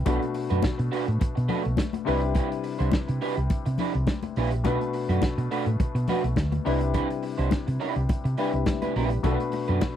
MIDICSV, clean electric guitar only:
0, 0, Header, 1, 3, 480
1, 0, Start_track
1, 0, Tempo, 573614
1, 52, Time_signature, 4, 2, 24, 8
1, 8338, End_track
2, 0, Start_track
2, 0, Title_t, "Clean electric guitar"
2, 0, Program_c, 0, 27
2, 49, Note_on_c, 0, 57, 91
2, 53, Note_on_c, 0, 62, 81
2, 57, Note_on_c, 0, 66, 96
2, 59, Note_on_c, 0, 71, 87
2, 170, Note_off_c, 0, 71, 0
2, 172, Note_off_c, 0, 66, 0
2, 174, Note_off_c, 0, 62, 0
2, 194, Note_off_c, 0, 57, 0
2, 417, Note_on_c, 0, 71, 60
2, 421, Note_on_c, 0, 66, 52
2, 422, Note_on_c, 0, 62, 51
2, 424, Note_on_c, 0, 57, 43
2, 519, Note_off_c, 0, 71, 0
2, 521, Note_off_c, 0, 62, 0
2, 521, Note_off_c, 0, 66, 0
2, 522, Note_off_c, 0, 57, 0
2, 765, Note_on_c, 0, 57, 80
2, 768, Note_on_c, 0, 62, 78
2, 770, Note_on_c, 0, 66, 88
2, 775, Note_on_c, 0, 71, 85
2, 884, Note_off_c, 0, 71, 0
2, 889, Note_off_c, 0, 66, 0
2, 891, Note_off_c, 0, 62, 0
2, 912, Note_off_c, 0, 57, 0
2, 1241, Note_on_c, 0, 57, 80
2, 1244, Note_on_c, 0, 62, 78
2, 1248, Note_on_c, 0, 66, 86
2, 1251, Note_on_c, 0, 71, 90
2, 1361, Note_off_c, 0, 71, 0
2, 1364, Note_off_c, 0, 66, 0
2, 1365, Note_off_c, 0, 62, 0
2, 1390, Note_off_c, 0, 57, 0
2, 1729, Note_on_c, 0, 55, 78
2, 1732, Note_on_c, 0, 62, 87
2, 1733, Note_on_c, 0, 64, 93
2, 1736, Note_on_c, 0, 71, 92
2, 1847, Note_off_c, 0, 71, 0
2, 1848, Note_off_c, 0, 64, 0
2, 1854, Note_off_c, 0, 62, 0
2, 1874, Note_off_c, 0, 55, 0
2, 1964, Note_on_c, 0, 55, 85
2, 1969, Note_on_c, 0, 62, 85
2, 1970, Note_on_c, 0, 64, 86
2, 1975, Note_on_c, 0, 71, 83
2, 2082, Note_off_c, 0, 71, 0
2, 2087, Note_off_c, 0, 64, 0
2, 2088, Note_off_c, 0, 62, 0
2, 2111, Note_off_c, 0, 55, 0
2, 2333, Note_on_c, 0, 72, 49
2, 2334, Note_on_c, 0, 64, 48
2, 2338, Note_on_c, 0, 62, 44
2, 2340, Note_on_c, 0, 55, 49
2, 2437, Note_off_c, 0, 64, 0
2, 2437, Note_off_c, 0, 72, 0
2, 2439, Note_off_c, 0, 62, 0
2, 2440, Note_off_c, 0, 55, 0
2, 2690, Note_on_c, 0, 55, 85
2, 2692, Note_on_c, 0, 62, 87
2, 2695, Note_on_c, 0, 64, 98
2, 2697, Note_on_c, 0, 71, 90
2, 2807, Note_off_c, 0, 71, 0
2, 2811, Note_off_c, 0, 64, 0
2, 2813, Note_off_c, 0, 62, 0
2, 2834, Note_off_c, 0, 55, 0
2, 3171, Note_on_c, 0, 55, 68
2, 3176, Note_on_c, 0, 62, 77
2, 3177, Note_on_c, 0, 64, 82
2, 3180, Note_on_c, 0, 71, 72
2, 3287, Note_off_c, 0, 71, 0
2, 3291, Note_off_c, 0, 64, 0
2, 3293, Note_off_c, 0, 62, 0
2, 3315, Note_off_c, 0, 55, 0
2, 3656, Note_on_c, 0, 55, 78
2, 3659, Note_on_c, 0, 62, 72
2, 3662, Note_on_c, 0, 64, 83
2, 3665, Note_on_c, 0, 71, 89
2, 3773, Note_off_c, 0, 71, 0
2, 3775, Note_off_c, 0, 64, 0
2, 3777, Note_off_c, 0, 62, 0
2, 3797, Note_off_c, 0, 55, 0
2, 3892, Note_on_c, 0, 57, 78
2, 3896, Note_on_c, 0, 62, 83
2, 3899, Note_on_c, 0, 66, 77
2, 3902, Note_on_c, 0, 71, 88
2, 4007, Note_off_c, 0, 71, 0
2, 4011, Note_off_c, 0, 66, 0
2, 4015, Note_off_c, 0, 62, 0
2, 4035, Note_off_c, 0, 57, 0
2, 4259, Note_on_c, 0, 71, 52
2, 4262, Note_on_c, 0, 66, 62
2, 4264, Note_on_c, 0, 62, 47
2, 4268, Note_on_c, 0, 57, 50
2, 4360, Note_off_c, 0, 71, 0
2, 4361, Note_off_c, 0, 66, 0
2, 4362, Note_off_c, 0, 62, 0
2, 4364, Note_off_c, 0, 57, 0
2, 4612, Note_on_c, 0, 57, 80
2, 4613, Note_on_c, 0, 62, 90
2, 4616, Note_on_c, 0, 66, 82
2, 4618, Note_on_c, 0, 71, 93
2, 4729, Note_off_c, 0, 71, 0
2, 4732, Note_off_c, 0, 66, 0
2, 4734, Note_off_c, 0, 62, 0
2, 4755, Note_off_c, 0, 57, 0
2, 5090, Note_on_c, 0, 57, 75
2, 5095, Note_on_c, 0, 62, 84
2, 5097, Note_on_c, 0, 66, 88
2, 5099, Note_on_c, 0, 71, 89
2, 5208, Note_off_c, 0, 71, 0
2, 5213, Note_off_c, 0, 66, 0
2, 5215, Note_off_c, 0, 62, 0
2, 5235, Note_off_c, 0, 57, 0
2, 5568, Note_on_c, 0, 55, 71
2, 5571, Note_on_c, 0, 62, 81
2, 5574, Note_on_c, 0, 64, 93
2, 5578, Note_on_c, 0, 71, 83
2, 5688, Note_off_c, 0, 71, 0
2, 5690, Note_off_c, 0, 64, 0
2, 5691, Note_off_c, 0, 62, 0
2, 5714, Note_off_c, 0, 55, 0
2, 5809, Note_on_c, 0, 55, 96
2, 5812, Note_on_c, 0, 62, 87
2, 5814, Note_on_c, 0, 64, 101
2, 5817, Note_on_c, 0, 71, 92
2, 5926, Note_off_c, 0, 71, 0
2, 5927, Note_off_c, 0, 64, 0
2, 5930, Note_off_c, 0, 62, 0
2, 5954, Note_off_c, 0, 55, 0
2, 6172, Note_on_c, 0, 72, 57
2, 6175, Note_on_c, 0, 64, 54
2, 6180, Note_on_c, 0, 62, 49
2, 6182, Note_on_c, 0, 55, 50
2, 6277, Note_off_c, 0, 72, 0
2, 6279, Note_off_c, 0, 64, 0
2, 6281, Note_off_c, 0, 62, 0
2, 6282, Note_off_c, 0, 55, 0
2, 6525, Note_on_c, 0, 55, 77
2, 6528, Note_on_c, 0, 62, 81
2, 6531, Note_on_c, 0, 64, 88
2, 6534, Note_on_c, 0, 71, 81
2, 6651, Note_off_c, 0, 71, 0
2, 6652, Note_off_c, 0, 64, 0
2, 6658, Note_off_c, 0, 62, 0
2, 6700, Note_off_c, 0, 55, 0
2, 7010, Note_on_c, 0, 55, 65
2, 7012, Note_on_c, 0, 62, 80
2, 7016, Note_on_c, 0, 64, 86
2, 7020, Note_on_c, 0, 71, 90
2, 7129, Note_off_c, 0, 71, 0
2, 7131, Note_off_c, 0, 64, 0
2, 7134, Note_off_c, 0, 62, 0
2, 7155, Note_off_c, 0, 55, 0
2, 7379, Note_on_c, 0, 71, 60
2, 7383, Note_on_c, 0, 64, 51
2, 7386, Note_on_c, 0, 62, 56
2, 7388, Note_on_c, 0, 55, 47
2, 7481, Note_off_c, 0, 71, 0
2, 7483, Note_off_c, 0, 64, 0
2, 7484, Note_off_c, 0, 62, 0
2, 7485, Note_off_c, 0, 55, 0
2, 7496, Note_on_c, 0, 55, 72
2, 7499, Note_on_c, 0, 62, 74
2, 7502, Note_on_c, 0, 64, 75
2, 7504, Note_on_c, 0, 71, 89
2, 7612, Note_off_c, 0, 71, 0
2, 7614, Note_off_c, 0, 64, 0
2, 7619, Note_off_c, 0, 62, 0
2, 7666, Note_off_c, 0, 55, 0
2, 7732, Note_on_c, 0, 57, 83
2, 7734, Note_on_c, 0, 62, 89
2, 7736, Note_on_c, 0, 66, 80
2, 7739, Note_on_c, 0, 71, 99
2, 7852, Note_off_c, 0, 71, 0
2, 7854, Note_off_c, 0, 66, 0
2, 7858, Note_off_c, 0, 62, 0
2, 7877, Note_off_c, 0, 57, 0
2, 8099, Note_on_c, 0, 71, 60
2, 8105, Note_on_c, 0, 66, 57
2, 8106, Note_on_c, 0, 62, 54
2, 8108, Note_on_c, 0, 57, 52
2, 8201, Note_off_c, 0, 71, 0
2, 8204, Note_off_c, 0, 66, 0
2, 8205, Note_off_c, 0, 62, 0
2, 8206, Note_off_c, 0, 57, 0
2, 8338, End_track
3, 0, Start_track
3, 0, Title_t, "Muted clean electric guitar strokes"
3, 180, Note_on_c, 9, 29, 49
3, 263, Note_off_c, 9, 29, 0
3, 292, Note_on_c, 9, 29, 36
3, 375, Note_off_c, 9, 29, 0
3, 654, Note_on_c, 9, 29, 41
3, 737, Note_off_c, 9, 29, 0
3, 894, Note_on_c, 9, 29, 38
3, 978, Note_off_c, 9, 29, 0
3, 1005, Note_on_c, 9, 29, 34
3, 1089, Note_off_c, 9, 29, 0
3, 1132, Note_on_c, 9, 29, 49
3, 1216, Note_off_c, 9, 29, 0
3, 1371, Note_on_c, 9, 29, 54
3, 1455, Note_off_c, 9, 29, 0
3, 1488, Note_on_c, 9, 29, 35
3, 1572, Note_off_c, 9, 29, 0
3, 1620, Note_on_c, 9, 29, 47
3, 1703, Note_off_c, 9, 29, 0
3, 1857, Note_on_c, 9, 29, 42
3, 1941, Note_off_c, 9, 29, 0
3, 2092, Note_on_c, 9, 29, 47
3, 2175, Note_off_c, 9, 29, 0
3, 2206, Note_on_c, 9, 29, 35
3, 2289, Note_off_c, 9, 29, 0
3, 2576, Note_on_c, 9, 29, 38
3, 2660, Note_off_c, 9, 29, 0
3, 2817, Note_on_c, 9, 29, 46
3, 2901, Note_off_c, 9, 29, 0
3, 3059, Note_on_c, 9, 29, 46
3, 3143, Note_off_c, 9, 29, 0
3, 3297, Note_on_c, 9, 29, 43
3, 3381, Note_off_c, 9, 29, 0
3, 3411, Note_on_c, 9, 29, 39
3, 3494, Note_off_c, 9, 29, 0
3, 3539, Note_on_c, 9, 29, 50
3, 3623, Note_off_c, 9, 29, 0
3, 3783, Note_on_c, 9, 29, 45
3, 3867, Note_off_c, 9, 29, 0
3, 4017, Note_on_c, 9, 29, 37
3, 4101, Note_off_c, 9, 29, 0
3, 4130, Note_on_c, 9, 29, 41
3, 4214, Note_off_c, 9, 29, 0
3, 4500, Note_on_c, 9, 29, 44
3, 4583, Note_off_c, 9, 29, 0
3, 4739, Note_on_c, 9, 29, 41
3, 4822, Note_off_c, 9, 29, 0
3, 4852, Note_on_c, 9, 29, 49
3, 4936, Note_off_c, 9, 29, 0
3, 4980, Note_on_c, 9, 29, 48
3, 5064, Note_off_c, 9, 29, 0
3, 5218, Note_on_c, 9, 29, 45
3, 5302, Note_off_c, 9, 29, 0
3, 5331, Note_on_c, 9, 29, 38
3, 5415, Note_off_c, 9, 29, 0
3, 5454, Note_on_c, 9, 29, 42
3, 5538, Note_off_c, 9, 29, 0
3, 5698, Note_on_c, 9, 29, 40
3, 5782, Note_off_c, 9, 29, 0
3, 5936, Note_on_c, 9, 29, 42
3, 6020, Note_off_c, 9, 29, 0
3, 6048, Note_on_c, 9, 29, 35
3, 6131, Note_off_c, 9, 29, 0
3, 6416, Note_on_c, 9, 29, 42
3, 6500, Note_off_c, 9, 29, 0
3, 6661, Note_on_c, 9, 29, 35
3, 6745, Note_off_c, 9, 29, 0
3, 6769, Note_on_c, 9, 29, 37
3, 6853, Note_off_c, 9, 29, 0
3, 6898, Note_on_c, 9, 29, 40
3, 6982, Note_off_c, 9, 29, 0
3, 7139, Note_on_c, 9, 29, 41
3, 7223, Note_off_c, 9, 29, 0
3, 7256, Note_on_c, 9, 29, 39
3, 7339, Note_off_c, 9, 29, 0
3, 7622, Note_on_c, 9, 29, 35
3, 7706, Note_off_c, 9, 29, 0
3, 7862, Note_on_c, 9, 29, 46
3, 7946, Note_off_c, 9, 29, 0
3, 7977, Note_on_c, 9, 29, 47
3, 8060, Note_off_c, 9, 29, 0
3, 8338, End_track
0, 0, End_of_file